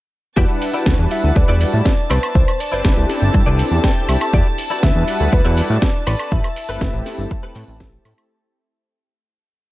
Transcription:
0.36 E2 G3 D4 E4 F#4 G4 B4 D5 F#5 A5, kick, maracas, shaker
0.48 maracas, shaker
0.61 muted clean electric guitar stroke, open hi-hat, maracas, shaker
0.74 G3 D4 E4 F#4 G4 B4 D5, shaker, maracas
0.86 D2, kick, snare, maracas, shaker
0.98 E2 G3 D4 E4 B4 F#5, muted clean electric guitar stroke, shaker
1.11 E5, open hi-hat, maracas, shaker
1.23 D2, maracas, shaker
1.36 D2 D5, muted clean electric guitar stroke, kick, maracas, shaker
1.48 E2 E4 F#4 G4 D5, shaker
1.60 G3 D4 E4 F#4 A4, open hi-hat, maracas, shaker
1.74 A2, maracas, shaker
1.85 kick, snare, shaker, maracas
1.99 shaker
2.10 C2 E4 B4 C5 D5, open hi-hat, high woodblock, maracas, shaker
2.23 high woodblock, maracas, shaker
2.35 C2 C5, kick, maracas, shaker
2.48 high woodblock, maracas, shaker
2.59 D5, muted clean electric guitar stroke, open hi-hat, maracas, shaker
2.72 G1 C4 D4 E4 G4 B4 C5 D5, maracas, shaker
2.84 G1, kick, snare, maracas, shaker
2.96 C2 C4 D4 E4 G4 A4, muted clean electric guitar stroke, shaker
3.09 snare, open hi-hat, maracas, shaker
3.22 G1, maracas, shaker
3.34 G2, muted clean electric guitar stroke, kick, maracas, shaker
3.46 C2 E4 B4 C5 D5, shaker
3.59 open hi-hat, maracas, shaker
3.71 E2, maracas, shaker
3.84 G5, kick, snare, maracas, shaker
3.97 shaker
4.09 C2 E5, open hi-hat, high woodblock, maracas, shaker
4.21 high woodblock, maracas, shaker
4.33 E2 E4 F#4 G4 D5, kick, maracas, shaker
4.46 maracas, shaker
4.57 muted clean electric guitar stroke, open hi-hat, maracas, shaker
4.70 G3 D4 E4 F#4 G4 B4 D5, maracas, shaker
4.83 D2 E5, kick, snare, maracas, shaker
4.95 E2 G3 D4 E4 B4 F#5, muted clean electric guitar stroke, shaker
5.08 open hi-hat, maracas, shaker
5.20 D2, maracas, shaker
5.32 D2 B4, muted clean electric guitar stroke, kick, maracas, shaker
5.45 E2 E4 F#4 G4 D5, shaker
5.51 E5
5.57 G3 D4 E4 F#4 A4 D5, open hi-hat, maracas, shaker
5.70 A2, shaker, maracas
5.82 kick, snare, shaker, maracas
5.95 shaker
6.07 A1 C4 G4 A4 B4 D5, open hi-hat, high woodblock, maracas, shaker
6.19 high woodblock, shaker, maracas
6.32 A1 E5, kick, maracas, shaker
6.44 high woodblock, maracas, shaker
6.56 muted clean electric guitar stroke, open hi-hat, shaker, maracas
6.69 G1 A3 C4 E4 G4 A4 B4, maracas, shaker
6.81 G1, kick, snare, maracas, shaker
6.93 A1 A3 C4 E4 G4 A4, muted clean electric guitar stroke, maracas, shaker
7.06 snare, open hi-hat, maracas, shaker
7.17 G1, maracas, shaker
7.31 muted clean electric guitar stroke, kick, maracas, shaker
7.43 C4 G4 A4 B4, shaker
7.55 A2, open hi-hat, maracas, shaker
7.68 A1, maracas, shaker
7.80 kick, snare, maracas, shaker
7.93 shaker
8.05 A2, open hi-hat, high woodblock, maracas, shaker
8.17 high woodblock, maracas, shaker

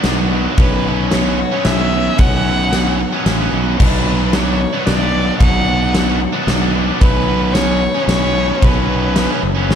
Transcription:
Already playing: B2 F#3 B3 D4 F#4
0.04 B1, snare, ride
0.18 F#3 B3 D4 F#4
0.31 B2 F#3 B3 D4 F#4
0.45 B3 D4 F#4
0.57 B1 B2 F#3 B3 C#4 B4, kick, ride
0.85 B2 F#3 B3 C#4
1.11 B2 F#3 B3 C#4 C#5, snare, ride
1.25 F#3 B3 C#4
1.39 muted overdriven electric guitar stroke, muted distorted electric guitar stroke
1.52 F#3 B3 C#4
1.65 B1 E5, snare, ride
1.79 F#3 B3 C#4
1.92 B2 F#3 B3 C#4
2.06 F#3 B3 C#4
2.18 B1 B2 F#3 B3 C#4 F#5, kick, ride
2.47 B2 F#3 B3 C#4
2.73 B2 F#3 B3 C#4, snare, ride
2.85 F#3 B3 C#4
2.99 muted distorted electric guitar stroke, muted overdriven electric guitar stroke
3.12 F#3 B3 C#4
3.26 A1, snare, ride
3.39 F#3 B3 C#4
3.53 B1 B2 F#3 B3 C#4
3.67 F#3 B3 C#4
3.80 B1 B2 F#3 B3 D4 B4, kick, crash
4.06 B2 F#3 B3 D4
4.33 B2 F#3 B3 D4 C#5, snare, ride
4.46 F#3 B3 D4
4.61 muted overdriven electric guitar stroke, muted distorted electric guitar stroke
4.74 F#3 B3 D4
4.87 B1 D5, snare, ride
5.01 F#3 B3 D4
5.14 B2 F#3 B3 D4
5.26 F#3 B3 D4
5.39 B1 B2 F#3 B3 D4 F#5, kick, ride
5.66 B2 F#3 B3 D4
5.93 B2 F#3 B3 D4, snare, ride
6.06 F#3 B3 D4
6.20 muted distorted electric guitar stroke, muted overdriven electric guitar stroke
6.33 F#3 B3 D4
6.47 B1, snare, ride
6.60 F#3 B3 D4
6.73 B2 F#3 B3 D4
6.87 F#3 B3 D4
7.00 B1 B2 F#3 B3 C#4 B4, kick, ride
7.27 B2 F#3 B3 C#4
7.53 B2 F#3 B3 C#4 C#5, snare, ride
7.68 F#3 B3 C#4
7.81 muted distorted electric guitar stroke, muted overdriven electric guitar stroke
7.95 F#3 B3 C#4
8.08 B1 C#5, snare, ride
8.21 F#3 B3 C#4
8.34 B2 F#3 B3 C#4
8.47 F#3 B3 C#4
8.61 B1 B2 F#3 B3 C#4 B4, kick, ride
8.89 B2 F#3 B3 C#4
9.16 B2 F#3 B3 C#4, snare, ride
9.28 F#3 B3 C#4
9.42 F#1, muted overdriven electric guitar stroke, muted distorted electric guitar stroke
9.57 F#3 B3 C#4
9.69 A1, snare

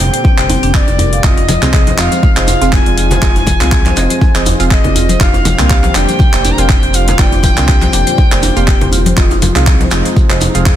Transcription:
Already playing: A#2 D3 G3 C4 G4 G5
0.00 F1, open hi-hat
0.13 C5, closed hi-hat
0.24 kick, djembe tone
0.38 F1 C5, clap, closed hi-hat
0.49 C4, open hi-hat, djembe tone, djembe bass
0.63 F1 D4, open hi-hat
0.74 D5, kick, clap
0.88 F1, closed hi-hat, djembe tone
0.99 A#4, open hi-hat, djembe bass
1.13 F5, closed hi-hat
1.23 F1 C3 F3 G#3 C4 D#4 F4 G#4 D#5, kick, clap, djembe tone, shekere
1.37 D#4, closed hi-hat, djembe tone
1.48 open hi-hat, djembe slap, high conga, low conga, shekere
1.62 C2 C4 F4 G#4 F5, clap, closed hi-hat, low conga, shekere
1.73 G#4, kick, clap, shekere
1.87 C5, closed hi-hat, djembe slap, high conga
1.98 F1 C4 F4 G#4 D#5 F5, clap, open hi-hat, shekere
2.12 C5, closed hi-hat, high conga, shekere
2.23 kick, low conga, shekere
2.37 F1 C4 F4 G#4 C5 D#5, clap, closed hi-hat
2.47 D#4 F5, open hi-hat, djembe tone, shekere
2.61 F1 C4 F4 G#4 F5, closed hi-hat, shekere
2.73 G#4 G#5, kick, clap, djembe bass, shekere
2.86 F1 C4 F4 G#4 D5, closed hi-hat
2.97 F4 G#5, open hi-hat, shekere
3.11 C5, closed hi-hat, djembe slap, low conga, shekere
3.22 F1 C4 F4 G#4 C5 D#5, kick, clap, djembe tone, shekere
3.36 D#4, closed hi-hat, djembe tone
3.47 kick, open hi-hat, djembe slap, high conga, low conga, shekere
3.60 C2 C4 F4 G#4 F5, clap, closed hi-hat, low conga, shekere
3.72 G#4, kick, clap, shekere
3.85 C5, clap, closed hi-hat, djembe slap, high conga
3.96 F1 C4 F4 G#4 D#5, open hi-hat, djembe slap, shekere
4.10 C5, closed hi-hat, high conga, shekere
4.21 kick, djembe tone, shekere
4.35 F1 C4 F4 G#4 C5 D#5, clap, closed hi-hat
4.46 D#4, open hi-hat, djembe tone, djembe bass, shekere
4.60 F1 C4 F4 G#4 F5, open hi-hat, shekere
4.71 G#4 D#5, kick, clap, shekere
4.84 F1 C4 F4 G#4 D5, closed hi-hat, djembe tone, low conga
4.95 F4, open hi-hat, djembe bass, shekere
5.09 C5, closed hi-hat, high conga, shekere
5.21 F1 A#2 D3 G3 A#3 D4 F4 G4 D5 F5, kick, clap, djembe tone, shekere
5.34 D4, closed hi-hat, djembe tone
5.45 open hi-hat, djembe slap, high conga, low conga, shekere
5.59 C2 A#3 C4 D4 G4 F5, clap, closed hi-hat, low conga, shekere
5.70 G4, kick, clap, shekere
5.83 C5, closed hi-hat, djembe slap, high conga
5.95 F1 A#3 D4 G4 D5 G5, clap, open hi-hat, shekere
6.08 C5, closed hi-hat, high conga, shekere
6.19 kick, low conga, shekere
6.33 F1 A#3 D4 G4 C5 D5, clap, closed hi-hat
6.45 D4, open hi-hat, djembe tone, shekere
6.50 A#5
6.58 F1 A#3 C4 D4 G4 F5 G5, closed hi-hat, shekere
6.69 G4, kick, clap, djembe bass, shekere
6.83 F1 A#3 D4 G4 C5, closed hi-hat
6.94 F4 F5, open hi-hat, shekere
7.08 C5, closed hi-hat, djembe slap, low conga, shekere
7.19 F1 A#3 D4 F4 G4 D5 G5, kick, clap, djembe tone, shekere
7.32 D4, closed hi-hat, djembe tone
7.43 G5, kick, open hi-hat, djembe slap, high conga, low conga, shekere
7.57 C2 A#3 C4 D4 G4 F5, clap, closed hi-hat, low conga, shekere
7.68 G4, kick, clap, shekere
7.82 C5, clap, closed hi-hat, djembe slap, high conga
7.93 F1 A#3 D4 G4 D5, open hi-hat, djembe slap, shekere
8.07 C5, closed hi-hat, high conga, shekere
8.18 kick, djembe tone, shekere
8.32 F1 A#3 D4 G4 C5 D5, clap, closed hi-hat
8.43 D4, open hi-hat, djembe tone, djembe bass, shekere
8.56 F1 A#3 C4 D4 G4 F5, open hi-hat, shekere
8.67 G4, kick, clap, shekere
8.81 F1 A#3 D4 G4 C5, closed hi-hat, djembe tone, low conga
8.91 F4, open hi-hat, djembe bass, shekere
9.06 C5, closed hi-hat, high conga, shekere
9.17 F1 C3 F3 G#3 C4 D#4 F4 G#4 D#5, kick, clap, djembe tone, shekere
9.31 D#4, closed hi-hat, djembe tone
9.42 open hi-hat, djembe slap, high conga, low conga, shekere
9.55 C2 C4 F4 G#4 F5, clap, closed hi-hat, low conga, shekere
9.66 G#4, kick, clap, shekere
9.80 C5, closed hi-hat, djembe slap, high conga
9.91 F1 C4 F4 G#4 D#5, clap, open hi-hat, shekere
10.05 C5, closed hi-hat, high conga, shekere
10.16 kick, low conga, shekere
10.30 F1 C4 F4 G#4 C5 D#5, clap, closed hi-hat
10.41 D#4, open hi-hat, djembe tone, shekere
10.55 F1 C4 F4 G#4 F5, closed hi-hat, shekere
10.65 G#4, kick, clap, djembe bass

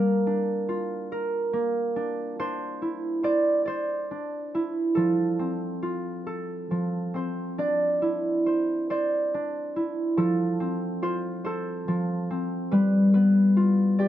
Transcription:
Already playing: A#3 D4 G4 A#4 C5
0.27 D4
0.69 F4
1.12 A#4
1.53 A#3
1.96 D4
2.39 D4 C5
2.82 E4
3.23 C5 D5
3.65 C5 D5
4.11 D4
4.55 E4
4.95 F3 A4
5.39 C4
5.82 F4
6.27 A4
6.71 F3
7.14 C4 C5
7.58 D4 D5
8.02 E4
8.46 C5
8.90 C5 D5
9.34 D4
9.76 E4
10.17 F3 A4
10.60 C4
11.02 F4 C5
11.44 A4 C5
11.88 F3
12.30 C4
12.71 G3 B4
13.14 B3 B4
13.57 F4
13.99 G4 D5

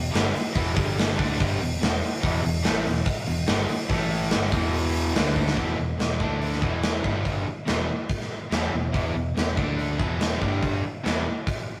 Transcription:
Already playing: E1 B2
0.10 G1 G2 D3 G3
0.15 snare, open hi-hat
0.32 muted overdriven electric guitar stroke, muted distorted electric guitar stroke, muted fingered electric bass stroke, open hi-hat
0.52 E1 E2 B2 E3, kick
0.56 B2 E3, open hi-hat
0.74 G1 G2 D3 G3, kick, open hi-hat
0.99 snare, open hi-hat
1.15 D2 D3 A3 D4, kick
1.20 open hi-hat
1.32 snare
1.38 G1 G2 D3 G3, kick, open hi-hat
1.58 E1 E2 B2, open hi-hat
1.79 E1 E2 B2, snare, open hi-hat
2.04 open hi-hat
2.21 E1 E2 B2 E3, kick, open hi-hat
2.42 E1 E2 B2, open hi-hat
2.62 A1 A2 E3 A3, snare, open hi-hat
2.84 E1 E2 B2, snare, open hi-hat
3.05 muted distorted electric guitar stroke, muted overdriven electric guitar stroke, muted fingered electric bass stroke, kick, open hi-hat
3.26 E1 E2 B2, open hi-hat
3.47 G1 G2 D3 G3, snare, open hi-hat
3.68 muted distorted electric guitar stroke, muted fingered electric bass stroke, muted overdriven electric guitar stroke, open hi-hat
3.89 A1 A2 E3 A3, kick, open hi-hat
4.10 open hi-hat
4.30 G1 G2 D3 G3, snare, open hi-hat
4.51 E1 E2 B2 E3, kick, open hi-hat
4.73 open hi-hat
4.94 open hi-hat
5.14 D2 D3 A3 D4, snare, open hi-hat
5.36 kick
5.48 snare
5.56 E1 E2 B2 E3, kick, open hi-hat
5.77 E1 E2 B2
5.97 E1 E2 B2, snare, open hi-hat
6.19 D2 D3 A3 D4, kick
6.42 open hi-hat
6.53 snare
6.60 E1 E2 B2 E3, kick
6.83 snare, open hi-hat
7.02 G1 G2 D3 G3, kick
7.25 kick, open hi-hat
7.46 muted overdriven electric guitar stroke, muted distorted electric guitar stroke, muted fingered electric bass stroke
7.65 E1 E2 B2 E3, snare, open hi-hat
8.09 kick, open hi-hat
8.21 snare
8.51 E1 E2 B2 E3, snare, open hi-hat
8.71 E1 E2 B2
8.93 E1 E2 B2 E3, kick, open hi-hat
9.14 E1 E2 B2
9.35 E1 E2 B2, snare, open hi-hat
9.56 D2 D3 A3 D4, kick
9.79 open hi-hat
9.98 E1 E2 B2 E3, kick
10.20 snare, open hi-hat
10.40 G1 G2 D3 G3, kick
10.63 kick, open hi-hat
10.83 muted distorted electric guitar stroke, muted overdriven electric guitar stroke, muted fingered electric bass stroke
11.04 E1 E2 B2 E3, snare, open hi-hat
11.47 kick, open hi-hat

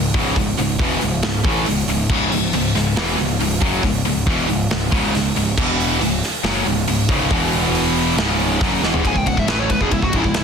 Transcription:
Already playing: C#1 C#2 G#2
0.14 C#1 C#2 G#2 C#3, kick
0.36 C#1 C#2 G#2, kick, open hi-hat
0.57 C#1 C#2 G#2, open hi-hat
0.79 E1 E2 B2 E3, kick, open hi-hat
1.00 C#1 C#2 G#2, open hi-hat
1.23 C#1 C#2 G#2, snare, open hi-hat
1.44 A1 A2 E3 A3, kick, open hi-hat
1.66 C#1 C#2 G#2, open hi-hat
1.88 C#1 C#2 G#2, open hi-hat
2.10 C#1 C#2 G#2 C#3, kick, crash
2.31 C#1 C#2 G#2, open hi-hat
2.53 C#1 C#2 G#2, open hi-hat
2.75 C#1 C#2 G#2, snare, open hi-hat
2.96 E1 E2 B2 E3, snare
3.18 C#1 C#2 G#2, open hi-hat
3.40 C#1 C#2 G#2, open hi-hat
3.62 F#1 F#2 C#3 F#3, kick, open hi-hat
3.82 C#1 C#2 G#2, kick, open hi-hat
4.04 C#1 C#2 G#2, open hi-hat
4.26 E1 E2 B2 E3, kick, open hi-hat
4.48 C#1 C#2 G#2, open hi-hat
4.71 C#1 C#2 G#2, snare, open hi-hat
4.92 C#1 C#2 G#2 C#3, kick, open hi-hat
5.14 C#1 C#2 G#2, snare, open hi-hat
5.36 C#1 C#2 G#2, open hi-hat
5.57 E1 E2 B2 E3, kick, crash
5.80 open hi-hat
6.00 C#1 C#2 G#2, open hi-hat
6.23 snare, open hi-hat
6.44 F#1 F#2 C#3 F#3, snare
6.66 C#1 C#2 G#2, open hi-hat
6.88 C#1 C#2 G#2, open hi-hat
7.09 C#1 C#2 G#2 C#3, kick, open hi-hat
7.30 E1 E2 B2 E3, kick, open hi-hat
7.53 open hi-hat
7.75 open hi-hat
7.96 open hi-hat
8.17 C#1 C#2 G#2 C#3, snare
8.40 open hi-hat
8.61 F#1 F#2 C#3 F#3, kick, snare, open hi-hat
8.83 E1 E2 B2 E3, snare
8.94 floor tom
9.04 C#1 C#2 G#2 G#5, kick, ride
9.15 C#1 C#2 G#2 G5, kick
9.26 C#1 C#2 G#2 F#5, kick, ride
9.37 C#1 C#2 G#2 E5, kick
9.47 A1 A2 E3 A3 B4, snare, ride
9.59 C#5
9.70 C#1 C#2 G#2 B4, kick, ride
9.80 E1 E2 B2 G#4, kick
9.91 C#1 C#2 G#2 E4, kick, ride
10.02 C#1 C#2 G#2 F#4, kick
10.13 C#1 C#2 G#2 E4, kick, ride
10.24 C#1 C#2 G#2, kick
10.34 C#1 C#2 G#2 E4, snare, ride

